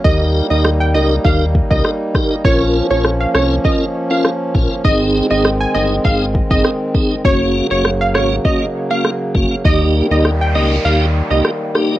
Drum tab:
SD |----r-------r-r-|----r-r-----r---|----r-------r---|----r-r-----r---|
BD |o-------o-oo--o-|o-------o-----o-|o-------o-oo--o-|o-------o-----o-|

SD |----r-------r-r-|
BD |o---------------|